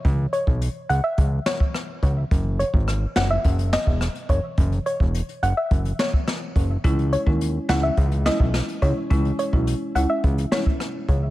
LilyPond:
<<
  \new Staff \with { instrumentName = "Synth pluck" } { \time 4/4 \key cis \minor \tempo 4 = 106 r8 cis''16 r8. fis''16 e''16 r8 cis''16 r4 r16 | r8 cis''16 r8. fis''16 e''16 r8 dis''16 r8. cis''16 r16 | r8 cis''16 r8. fis''16 e''16 r8 cis''16 r4 r16 | r8 cis''16 r8. fis''16 e''16 r8 dis''16 r8. cis''16 r16 |
r8 cis''16 r8. fis''16 e''16 r8 cis''16 r4 r16 | }
  \new Staff \with { instrumentName = "Marimba" } { \time 4/4 \key cis \minor r1 | r1 | r1 | <gis cis' e'>16 r8 <gis cis' e'>16 r8 <gis cis' e'>16 r8. <gis cis' e'>16 r8. <gis cis' e'>16 r16 |
<gis cis' e'>16 r8 <gis cis' e'>16 r8 <gis cis' e'>16 r8. <gis cis' e'>16 r4 r16 | }
  \new Staff \with { instrumentName = "Analog synth bass" } { \clef bass \time 4/4 \key cis \minor cis,8 r16 b,,8 r16 cis,16 r16 cis,8 r4 cis,8 | fis,,8. gis,,8. fis,,8 fis,,8. e,,8 r16 fis,,16 r16 | fis,,8 r16 e,,8 r16 fis,,16 r16 fis,,8 r4 fis,,8 | cis,8. dis,8. cis,8 cis,8. b,,8 r16 cis,16 r16 |
cis,8 r16 b,,8 r16 cis,16 r16 cis,8 r4 cis,8 | }
  \new DrumStaff \with { instrumentName = "Drums" } \drummode { \time 4/4 <hh bd>8 hh16 bd16 hh8 hh8 <hh bd>8 <hh sn>16 bd16 <hh ss>8 <hh bd>8 | <hh bd>8 hh16 bd16 <hh ss>8 <hh sn>8 <hh bd>16 hh16 <hh sn>16 bd16 <hh ss>16 hh16 <hh bd>8 | <hh bd>16 hh16 hh16 bd16 hh16 hh16 hh8 <hh bd>16 hh16 <hh sn>16 bd16 <hh ss sn>8 <hh bd>8 | <hh bd>16 hh16 hh16 bd16 hh8 <hh sn>8 <hh bd>16 hh16 <hh sn>16 bd16 <hh ss sn>16 hh16 <hh bd>8 |
<hh bd>16 hh16 hh16 bd16 hh8 hh8 <hh bd>16 hh16 <hh sn>16 bd16 <hh ss>8 <hh bd>8 | }
>>